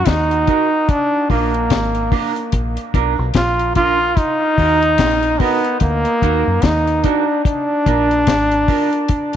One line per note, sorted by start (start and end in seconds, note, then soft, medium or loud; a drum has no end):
0.06 0.46 D#2 medium
0.06 0.91 D#4 loud
0.06 kick loud
0.06 snare loud
0.06 closed hi-hat medium
0.31 closed hi-hat soft
0.47 0.67 D#4 medium
0.47 0.67 F#4 medium
0.47 0.67 A#4 medium
0.47 kick medium
0.47 closed hi-hat medium
0.89 1.30 D4 loud
0.89 kick loud
0.89 closed hi-hat medium
1.30 1.69 A#1 loud
1.30 2.90 A#3 medium
1.30 1.49 D4 medium
1.30 1.49 F4 medium
1.30 1.50 A#4 medium
1.30 kick medium
1.30 open hi-hat medium
1.54 closed hi-hat medium
1.70 2.10 G#1 medium
1.70 kick medium
1.70 snare loud
1.70 closed hi-hat medium
1.95 closed hi-hat soft
2.12 2.31 D4 medium
2.12 2.31 F4 medium
2.12 2.32 A#4 loud
2.12 kick loud
2.12 open hi-hat medium
2.36 closed hi-hat medium
2.52 2.76 A#1 loud
2.52 kick loud
2.52 closed hi-hat medium
2.77 closed hi-hat medium
2.94 3.17 B1 loud
2.94 3.13 D4 medium
2.94 3.13 F4 medium
2.94 3.14 A#4 loud
2.94 kick medium
2.94 closed hi-hat medium
3.19 3.35 B1 medium
3.34 4.13 A#1 loud
3.34 3.74 F4 loud
3.34 kick loud
3.34 snare loud
3.34 closed hi-hat medium
3.59 closed hi-hat soft
3.75 3.95 D4 medium
3.75 4.19 F4 loud
3.75 3.95 F4 medium
3.75 3.96 A#4 medium
3.75 kick medium
3.75 closed hi-hat medium
4.17 5.42 D#4 loud
4.17 kick loud
4.17 closed hi-hat medium
4.58 4.97 D#2 loud
4.58 4.77 D#4 medium
4.58 4.78 F#4 medium
4.58 4.78 A#4 loud
4.58 kick medium
4.58 open hi-hat medium
4.83 closed hi-hat medium
4.98 5.38 A#1 medium
4.98 kick loud
4.98 snare loud
4.98 closed hi-hat medium
5.23 closed hi-hat soft
5.39 5.81 B3 loud
5.39 5.59 D#4 medium
5.39 5.59 F#4 medium
5.39 5.60 A#4 loud
5.39 kick loud
5.39 open hi-hat medium
5.64 closed hi-hat medium
5.80 6.04 D2 loud
5.80 6.64 A#3 loud
5.80 kick loud
5.80 closed hi-hat medium
6.05 closed hi-hat medium
6.22 6.45 D#2 loud
6.22 6.41 D#4 medium
6.22 6.42 F#4 medium
6.22 6.42 A#4 loud
6.22 kick medium
6.22 closed hi-hat medium
6.47 6.63 F#2 medium
6.62 7.02 D#2 loud
6.62 7.06 D#4 loud
6.62 kick loud
6.62 snare loud
6.62 closed hi-hat medium
6.87 closed hi-hat soft
7.04 7.44 D4 medium
7.04 7.24 D#4 medium
7.04 7.24 F#4 medium
7.04 7.24 A#4 medium
7.04 kick medium
7.04 closed hi-hat medium
7.45 9.36 D4 loud
7.45 kick loud
7.45 closed hi-hat medium
7.86 8.26 A#1 loud
7.86 8.06 D4 medium
7.86 8.06 F4 medium
7.86 8.06 A#4 loud
7.86 kick medium
7.86 closed hi-hat medium
8.11 closed hi-hat soft
8.27 8.67 G#1 medium
8.27 kick loud
8.27 snare loud
8.27 closed hi-hat loud
8.51 closed hi-hat soft
8.68 8.88 D4 medium
8.68 8.88 F4 medium
8.68 8.88 A#4 loud
8.68 kick loud
8.68 open hi-hat medium
8.93 closed hi-hat medium
9.08 kick loud
9.08 closed hi-hat medium
9.33 closed hi-hat medium